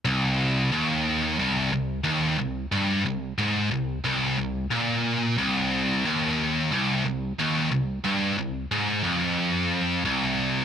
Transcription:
\new Staff \with { instrumentName = "Distorted electric guitar" } { \clef bass \time 4/4 \key c \minor \tempo 4 = 90 c,4 ees,4 c,8 c,8 ees,8 c,8 | g,8 c,8 aes,8 c,8 c,8 c,8 bes,4 | c,4 ees,4 c,8 c,8 ees,8 c,8 | g,8 c,8 aes,8 f,4. c,4 | }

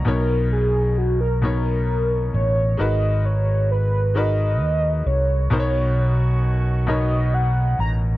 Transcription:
<<
  \new Staff \with { instrumentName = "Soft synth lead" } { \time 6/8 \key b \major \tempo 4. = 44 ais'8 gis'8 fis'16 ais'16 ais'4 cis''8 | dis''8 cis''8 b'8 dis''4 cis''8~ | cis''4 r8 dis''8 fis''8 ais''8 | }
  \new Staff \with { instrumentName = "Grand piano" } { \time 6/8 \key b \major <b, b dis' ais' cis''>4 r8 <b, b dis' ais' cis''>4 r8 | <gis dis' fis' ais' b'>4 r8 <gis dis' fis' ais' b'>4 r8 | <b, b dis' ais' c'' cis''>4 r8 <b, b dis' ais' cis''>4 r8 | }
  \new Staff \with { instrumentName = "Horn section" } { \time 6/8 \key b \major r2. | r2. | <dis cis' fis'>2~ <dis cis' fis'>8 r8 | }
  \new Staff \with { instrumentName = "Fingered electric bass" } { \clef bass \time 6/8 \key b \major b,,2~ b,,8 a,,8 | gis,,2 dis,8 c,8 | b,,2~ b,,8 a,,8 | }
>>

